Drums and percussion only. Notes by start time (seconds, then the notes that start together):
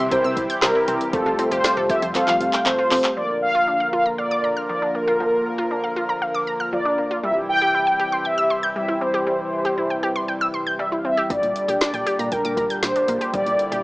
0.11 kick, closed hi-hat
0.37 kick, closed hi-hat
0.50 closed hi-hat
0.62 snare, clap, closed hi-hat
0.88 closed hi-hat
1.01 closed hi-hat
1.13 kick, closed hi-hat
1.39 closed hi-hat
1.52 closed hi-hat
1.64 snare, closed hi-hat
1.90 kick, closed hi-hat
2.02 closed hi-hat
2.15 clap, closed hi-hat
2.28 clap
2.41 closed hi-hat
2.53 clap, closed hi-hat
2.66 clap, closed hi-hat
2.91 clap, open hi-hat
3.04 clap, closed hi-hat
11.30 kick, closed hi-hat
11.43 closed hi-hat
11.56 closed hi-hat
11.69 closed hi-hat
11.81 snare, closed hi-hat
11.94 closed hi-hat
12.07 closed hi-hat
12.19 closed hi-hat
12.32 kick, closed hi-hat
12.45 closed hi-hat
12.57 kick, closed hi-hat
12.70 closed hi-hat
12.83 snare, closed hi-hat
12.96 closed hi-hat
13.08 closed hi-hat
13.21 closed hi-hat
13.34 kick, closed hi-hat
13.46 closed hi-hat
13.59 closed hi-hat
13.72 closed hi-hat